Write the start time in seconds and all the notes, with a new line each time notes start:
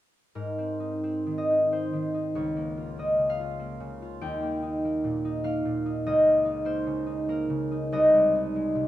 0.35 G#2 A#4
0.58 C4
0.80 D#4
1.04 C4
1.26 D#3
1.38 D#5
1.51 D#4
1.72 C4 C5
1.93 D#3
2.14 D#4
2.35 C#2 C#5
2.56 A#3
2.77 F4
2.99 A#3 D#5
3.18 C#3
3.30 F5
3.40 F4
3.59 A#3
3.80 C#3
4.02 F4
4.21 D#2 G5
4.43 A#3
4.63 D#4
4.85 A#3
5.04 A#2
5.25 D#4
5.44 A#3 F5
5.65 A#2
5.86 D#4
6.06 C#2 D#5
6.26 A#3
6.45 D#4
6.65 A#3 C5
6.86 C#3
7.06 D#4
7.28 A#3 A#4
7.50 C#3
7.71 D#4
7.92 C2 D#5
8.14 G#3
8.35 D#4
8.56 G#3
8.75 C3